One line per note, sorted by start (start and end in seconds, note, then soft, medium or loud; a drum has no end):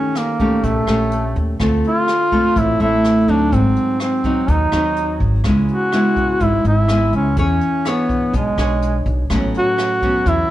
0.00 0.62 D#3 medium
0.00 0.36 A3 medium
0.00 0.19 C#4 loud
0.00 0.36 C#4 medium
0.00 0.36 G4 medium
0.15 0.66 A#3 medium
0.15 cross-stick medium
0.15 closed hi-hat soft
0.40 0.84 A3 medium
0.40 0.84 C#4 medium
0.40 0.84 G4 medium
0.40 kick soft
0.40 closed hi-hat soft
0.63 0.86 A#1 medium
0.63 1.58 A#2 medium
0.63 1.36 A3 medium
0.63 kick medium
0.63 closed hi-hat soft
0.87 1.32 A#1 medium
0.87 1.56 A3 medium
0.87 1.56 C#4 medium
0.87 1.57 G4 medium
0.87 cross-stick medium
0.87 closed hi-hat soft
1.11 closed hi-hat soft
1.36 1.58 D#2 medium
1.36 closed hi-hat soft
1.60 1.82 D2 medium
1.60 2.54 D3 medium
1.60 2.08 A3 medium
1.60 2.08 C4 medium
1.60 2.08 F4 medium
1.60 kick medium
1.60 cross-stick medium
1.60 closed hi-hat soft
1.84 2.60 F4 loud
1.84 closed hi-hat soft
2.08 cross-stick medium
2.08 closed hi-hat soft
2.32 2.76 A3 medium
2.32 2.76 C4 soft
2.32 2.77 F4 medium
2.32 kick soft
2.32 closed hi-hat soft
2.56 2.78 A1 medium
2.56 3.50 A2 medium
2.56 2.81 E4 loud
2.56 kick medium
2.56 closed hi-hat soft
2.80 3.25 A1 medium
2.80 3.24 A3 medium
2.80 3.24 C4 medium
2.80 3.32 E4 loud
2.80 closed hi-hat soft
3.04 cross-stick medium
3.04 closed hi-hat soft
3.28 3.50 D2 medium
3.28 4.21 F#3 medium
3.28 4.21 C4 medium
3.28 3.56 D4 medium
3.28 4.21 D#4 medium
3.28 closed hi-hat soft
3.52 3.75 G#1 loud
3.52 4.46 G#2 medium
3.52 4.01 C4 medium
3.52 kick medium
3.52 closed hi-hat soft
3.76 closed hi-hat soft
4.00 4.51 C4 medium
4.00 cross-stick medium
4.00 closed hi-hat soft
4.24 4.69 F#3 medium
4.24 4.69 C4 soft
4.24 4.69 D#4 medium
4.24 kick soft
4.24 closed hi-hat soft
4.48 4.71 D#2 medium
4.48 5.42 D#3 medium
4.48 5.21 D#4 medium
4.48 kick medium
4.48 closed hi-hat soft
4.72 5.17 D#2 medium
4.72 5.41 F#3 medium
4.72 5.41 C4 medium
4.72 5.41 D#4 medium
4.72 cross-stick medium
4.72 closed hi-hat soft
4.96 closed hi-hat soft
5.20 5.43 G#1 medium
5.20 kick soft
5.20 closed hi-hat soft
5.44 5.67 C#2 medium
5.44 6.38 C#3 medium
5.44 5.89 G#3 soft
5.44 5.89 B3 medium
5.44 5.89 E4 medium
5.44 kick medium
5.44 cross-stick medium
5.44 closed hi-hat soft
5.68 6.45 F#4 medium
5.68 closed hi-hat soft
5.92 6.85 G#3 soft
5.92 6.86 B3 soft
5.92 6.86 E4 medium
5.92 cross-stick medium
5.92 closed hi-hat soft
6.16 kick soft
6.16 closed hi-hat soft
6.40 6.63 G#1 medium
6.40 7.35 G#2 medium
6.40 6.66 E4 loud
6.40 kick medium
6.40 closed hi-hat soft
6.64 7.10 G#1 medium
6.64 7.11 E4 medium
6.64 closed hi-hat soft
6.88 7.35 G#3 medium
6.88 7.35 B3 soft
6.88 7.36 E4 medium
6.88 cross-stick medium
6.88 closed hi-hat soft
7.13 7.35 C#2 medium
7.13 7.37 C#4 medium
7.13 closed hi-hat soft
7.37 7.60 E2 medium
7.37 8.31 E3 medium
7.37 7.89 C#4 medium
7.37 7.82 G#4 medium
7.37 7.82 C#5 medium
7.37 kick medium
7.37 closed hi-hat soft
7.61 closed hi-hat soft
7.85 8.35 B3 medium
7.85 8.54 D4 medium
7.85 8.54 G#4 medium
7.85 8.54 C#5 medium
7.85 cross-stick medium
7.85 closed hi-hat soft
8.09 kick medium
8.09 closed hi-hat soft
8.33 8.56 B1 medium
8.33 9.28 B2 medium
8.33 9.03 G#3 medium
8.33 kick medium
8.33 closed hi-hat soft
8.58 9.02 B1 medium
8.58 9.26 D4 medium
8.58 9.26 G#4 medium
8.58 9.26 C#5 medium
8.58 cross-stick medium
8.58 closed hi-hat soft
8.82 closed hi-hat soft
9.06 9.28 B1 medium
9.06 closed hi-hat soft
9.30 9.52 A1 medium
9.30 10.24 A2 medium
9.30 9.98 F#3 soft
9.30 9.99 B3 medium
9.30 9.99 C#4 medium
9.30 kick medium
9.30 cross-stick medium
9.30 closed hi-hat soft
9.54 10.30 F#4 loud
9.54 closed hi-hat soft
9.78 cross-stick medium
9.78 closed hi-hat soft
10.02 10.47 F#3 medium
10.02 10.47 B3 medium
10.02 10.47 C#4 medium
10.02 kick medium
10.02 closed hi-hat soft
10.26 10.48 E2 medium
10.26 10.51 E3 medium
10.26 10.51 E4 loud
10.26 kick medium
10.26 closed hi-hat soft